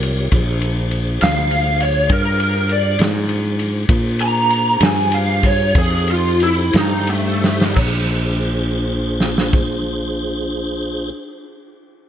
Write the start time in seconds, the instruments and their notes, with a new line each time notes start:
Already playing: fretless electric bass C2, tonewheel organ F4 G4 A#4 C#5
0.03 ride
0.32 fretless electric bass A#1, tonewheel organ D4 F4 G#4 C5, kick, ride
0.62 ride
0.91 ride
1.21 fretless electric bass D2, lead electric guitar F5, snare, ride
1.51 ride
1.80 lead electric guitar C#5, ride
2.09 fretless electric bass G2, lead electric guitar A#4, kick, ride
2.40 ride
2.69 lead electric guitar D5, ride
2.99 fretless electric bass G#2, snare, ride
3.29 ride
3.59 ride
3.89 fretless electric bass A#2, tonewheel organ D4 F4 G#4 C5, kick, ride
4.19 lead electric guitar A#5, ride
4.50 ride
4.81 fretless electric bass G2, lead electric guitar G#5, snare, ride
5.12 lead electric guitar F5, ride
5.43 lead electric guitar C#5, kick, ride
5.74 fretless electric bass F2, tonewheel organ D#4 G4 A4 C5, lead electric guitar G#4, kick, ride
6.08 lead electric guitar F4, ride
6.40 lead electric guitar E4, ride
6.73 fretless electric bass G2, lead electric guitar D#4, snare, ride
7.07 lead electric guitar A3, ride
7.44 snare
7.61 snare
7.75 fretless electric bass A#1, tonewheel organ D4 F4 G#4 C5, kick, crash
9.20 snare
9.38 snare
9.53 kick